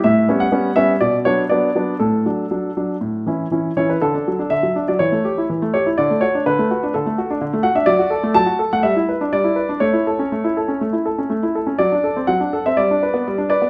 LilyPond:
\new Staff \with { instrumentName = "Grand piano" } { \time 4/4 \key d \major \tempo 4 = 123 << { e''8. fis''8. e''8 d''8 cis''8 d''4 | a'2. r8 cis''16 b'16 | a'4 e''8. d''16 cis''4. cis''8 | d''8 cis''8 b'4 a'4 r8 fis''16 e''16 |
d''4 a''8. fis''16 e''4 d''4 | cis''2.~ cis''8 r8 | d''4 fis''8. e''16 d''4. d''8 | } \\ { a,8 <g b cis'>8 <g b cis'>8 <g b cis'>8 b,8 <fis b d'>8 <fis b d'>8 <fis b d'>8 | a,8 <fis d'>8 <fis d'>8 <fis d'>8 a,8 <e cis' e'>8 <e cis' e'>8 <e cis' e'>8 | d16 d'16 fis16 d'16 d16 fis16 d'16 fis16 e16 a16 g'16 e'16 e16 a16 g'16 e'16 | d16 a16 fis'16 d'16 d16 a16 fis'16 d'16 d16 a16 fis'16 d'16 d16 a16 fis'16 d'16 |
fis16 fis'16 a'16 a16 fis16 fis'16 a'16 a16 g16 e'16 b'16 d'16 g16 e'16 b'16 d'16 | a16 e'16 a'16 cis'16 a16 e'16 a'16 cis'16 a16 e'16 a'16 cis'16 a16 e'16 a'16 cis'16 | fis16 d'16 a'16 c'16 fis16 d'16 a'16 c'16 g16 d'16 b'16 b16 g16 d'16 b'16 b16 | } >> }